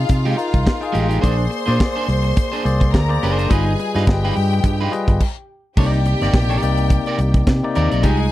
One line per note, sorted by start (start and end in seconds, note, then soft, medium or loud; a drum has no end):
0.00 0.37 D#4 medium
0.00 0.38 F4 medium
0.00 1.19 F4 medium
0.00 0.83 G#4 medium
0.00 1.20 F5 medium
0.09 0.33 C3 loud
0.09 muted clean electric guitar stroke soft
0.09 kick loud
0.09 closed hi-hat loud
0.25 0.36 G#3 medium
0.25 0.37 D#4 medium
0.25 0.37 G4 medium
0.25 closed hi-hat soft
0.37 0.65 D#4 medium
0.37 0.66 F4 medium
0.37 0.66 A#4 medium
0.37 muted clean electric guitar stroke soft
0.37 closed hi-hat medium
0.53 0.64 C2 medium
0.53 muted clean electric guitar stroke soft
0.53 kick loud
0.53 closed hi-hat soft
0.66 muted clean electric guitar stroke soft
0.66 kick loud
0.66 snare loud
0.81 1.09 D#4 medium
0.81 1.10 F4 medium
0.81 1.10 G#4 medium
0.81 muted clean electric guitar stroke soft
0.81 closed hi-hat soft
0.92 1.18 A1 medium
0.92 1.08 G#3 medium
0.92 1.08 D#4 loud
0.92 1.07 G4 loud
0.92 closed hi-hat medium
1.08 1.25 G#3 medium
1.08 1.21 D#4 medium
1.08 1.21 G4 medium
1.08 closed hi-hat soft
1.21 1.46 A#1 loud
1.21 1.51 A#3 medium
1.21 1.44 D4 medium
1.21 1.38 G#4 medium
1.21 1.51 G#4 medium
1.21 1.37 C5 medium
1.21 1.51 C5 medium
1.21 2.90 C5 medium
1.21 1.51 D5 medium
1.21 2.91 C6 medium
1.21 kick loud
1.21 closed hi-hat medium
1.38 muted clean electric guitar stroke soft
1.38 closed hi-hat soft
1.51 muted clean electric guitar stroke soft
1.51 closed hi-hat medium
1.66 1.78 A#2 loud
1.66 2.31 A#3 medium
1.66 1.78 D4 medium
1.66 1.79 G#4 medium
1.66 2.31 G#4 medium
1.66 1.79 C5 medium
1.66 2.31 C5 medium
1.66 2.31 D5 medium
1.66 closed hi-hat soft
1.80 kick loud
1.80 snare loud
1.96 2.07 D4 medium
1.96 2.08 G#4 medium
1.96 2.08 C5 medium
2.08 2.31 C2 loud
2.08 muted clean electric guitar stroke soft
2.08 closed hi-hat medium
2.23 muted clean electric guitar stroke soft
2.23 closed hi-hat soft
2.37 muted clean electric guitar stroke soft
2.37 kick loud
2.37 closed hi-hat loud
2.52 2.64 D4 medium
2.52 2.64 G#4 medium
2.52 2.64 C5 medium
2.52 closed hi-hat soft
2.64 2.94 C2 loud
2.64 2.92 A#3 medium
2.64 2.93 G#4 medium
2.64 2.93 C5 medium
2.64 2.93 D5 medium
2.64 muted clean electric guitar stroke soft
2.64 closed hi-hat medium
2.80 muted clean electric guitar stroke medium
2.80 kick loud
2.80 closed hi-hat soft
2.93 3.17 D2 medium
2.93 3.49 A#4 medium
2.93 3.49 A#5 medium
2.93 muted clean electric guitar stroke soft
2.93 kick loud
2.93 snare loud
3.08 3.37 A#3 medium
3.08 3.36 G#4 medium
3.08 3.37 C5 medium
3.08 3.37 D5 medium
3.08 muted clean electric guitar stroke soft
3.23 3.45 F#1 loud
3.23 3.39 D4 medium
3.23 3.38 G#4 medium
3.23 3.38 C5 medium
3.23 closed hi-hat medium
3.39 3.50 D4 medium
3.39 3.51 G#4 medium
3.39 3.51 C5 medium
3.39 closed hi-hat medium
3.49 3.74 G1 loud
3.49 3.78 G3 medium
3.49 3.72 D#4 medium
3.49 3.78 F4 medium
3.49 3.66 F4 medium
3.49 3.78 G#4 medium
3.49 4.06 G#4 medium
3.49 3.78 B4 medium
3.49 3.65 B4 loud
3.49 3.78 D#5 loud
3.49 4.06 G#5 medium
3.49 kick loud
3.49 closed hi-hat medium
3.66 muted clean electric guitar stroke soft
3.79 muted clean electric guitar stroke soft
3.79 closed hi-hat medium
3.95 4.05 G2 loud
3.95 4.58 G3 medium
3.95 4.05 D#4 medium
3.95 4.58 F4 medium
3.95 4.06 F4 medium
3.95 4.59 G#4 medium
3.95 4.06 B4 medium
3.95 4.59 B4 medium
3.95 4.59 D#5 medium
3.95 snare soft
3.95 closed hi-hat soft
4.07 4.30 G1 loud
4.07 5.19 G4 medium
4.07 5.19 G5 loud
4.07 muted clean electric guitar stroke soft
4.07 kick loud
4.07 snare loud
4.25 4.35 D#4 medium
4.25 4.35 F4 medium
4.25 4.36 B4 medium
4.36 4.59 G2 medium
4.36 muted clean electric guitar stroke soft
4.36 open hi-hat medium
4.51 muted clean electric guitar stroke soft
4.51 closed hi-hat soft
4.64 4.87 G2 loud
4.64 muted clean electric guitar stroke soft
4.64 kick loud
4.64 closed hi-hat loud
4.81 4.93 D#4 medium
4.81 4.93 F4 medium
4.81 4.93 B4 medium
4.91 5.20 G3 medium
4.91 5.20 F4 medium
4.91 5.20 G#4 medium
4.91 5.20 B4 medium
4.91 5.20 D#5 loud
4.91 muted clean electric guitar stroke soft
4.91 closed hi-hat medium
5.08 5.18 G1 medium
5.08 muted clean electric guitar stroke soft
5.08 kick loud
5.08 closed hi-hat soft
5.21 kick loud
5.21 crash medium
5.77 6.13 C2 loud
5.77 6.05 C3 medium
5.77 6.05 A#3 medium
5.77 5.99 D#4 medium
5.77 6.05 D#4 medium
5.77 7.72 G4 medium
5.77 5.92 A#4 medium
5.77 5.91 D5 medium
5.77 6.06 D5 medium
5.77 7.72 G5 medium
5.77 kick loud
5.77 crash loud
5.92 muted clean electric guitar stroke soft
5.92 closed hi-hat soft
6.06 muted clean electric guitar stroke soft
6.06 closed hi-hat medium
6.21 6.32 G1 medium
6.21 6.49 C3 medium
6.21 6.49 A#3 medium
6.21 6.50 D#4 medium
6.21 6.34 D#4 medium
6.21 6.34 A#4 medium
6.21 6.35 D5 medium
6.21 6.50 D5 medium
6.21 snare soft
6.21 closed hi-hat soft
6.34 6.57 A#1 loud
6.34 muted clean electric guitar stroke soft
6.34 kick loud
6.34 snare loud
6.50 6.61 D#4 medium
6.50 6.62 A#4 medium
6.50 6.62 D5 medium
6.50 closed hi-hat soft
6.62 6.98 C2 medium
6.62 7.28 C3 medium
6.62 7.28 A#3 medium
6.62 7.28 D#4 medium
6.62 7.28 D5 medium
6.62 muted clean electric guitar stroke soft
6.62 closed hi-hat medium
6.78 muted clean electric guitar stroke medium
6.78 closed hi-hat soft
6.90 muted clean electric guitar stroke soft
6.90 kick loud
6.90 closed hi-hat medium
7.06 7.19 D#4 medium
7.06 7.19 A#4 medium
7.06 7.20 D5 loud
7.06 closed hi-hat soft
7.18 7.42 C2 medium
7.18 muted clean electric guitar stroke soft
7.18 closed hi-hat medium
7.34 muted clean electric guitar stroke soft
7.34 kick loud
7.34 closed hi-hat soft
7.47 7.60 C3 loud
7.47 muted clean electric guitar stroke soft
7.47 kick loud
7.47 snare loud
7.63 7.71 C3 medium
7.63 7.72 A#3 medium
7.63 7.72 D#4 medium
7.63 7.72 D5 medium
7.63 muted clean electric guitar stroke medium
7.75 7.89 D#2 loud
7.75 7.95 C3 medium
7.75 7.96 A#3 medium
7.75 7.92 D#4 medium
7.75 7.96 D#4 medium
7.75 7.91 A#4 medium
7.75 7.96 D5 medium
7.75 7.90 D5 medium
7.75 closed hi-hat medium
7.91 8.04 B1 medium
7.91 8.03 D#4 medium
7.91 8.04 A#4 medium
7.91 8.07 D5 medium
7.91 closed hi-hat medium
8.02 8.27 C2 loud
8.02 8.26 G#3 medium
8.02 8.32 D#4 medium
8.02 8.20 D#4 medium
8.02 8.32 F4 medium
8.02 8.19 G4 medium
8.02 8.32 G#4 loud
8.02 8.32 G#4 medium
8.02 8.32 G#5 loud
8.02 kick loud
8.02 closed hi-hat medium
8.20 muted clean electric guitar stroke soft